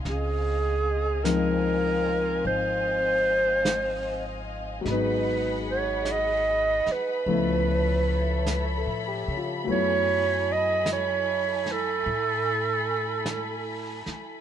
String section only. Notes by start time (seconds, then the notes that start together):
0.06 C4 D#5 F5 G#5
4.88 G#4 F#5 B5
7.29 A4 C#5 E5
9.68 E4 A4 G#5